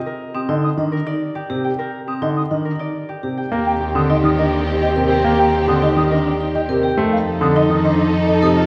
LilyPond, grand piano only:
\new Staff \with { instrumentName = "Grand piano" } { \clef bass \time 3/4 \key c \minor \tempo 4 = 104 r8. d16 r16 ees16 r4 c16 r16 | r8. d16 r16 ees16 r4 c16 r16 | \key ees \lydian bes16 r8 d16 r16 ees16 r4 c16 r16 | bes16 r8 d16 r16 ees16 r4 c16 r16 |
a16 r8 d16 r16 ees16 r4 c16 r16 | }